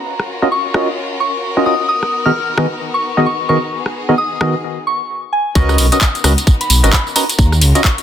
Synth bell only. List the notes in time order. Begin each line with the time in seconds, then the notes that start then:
0.52 C#6
1.20 C#6
1.66 D#6
1.89 D#6
2.26 F6
2.94 C#6
3.26 C#6
3.49 C#6
4.18 D#6
4.87 C#6
5.33 G#5
5.55 C#6
5.92 D#6
6.61 B5
6.93 B5
7.16 A#5
7.85 C#6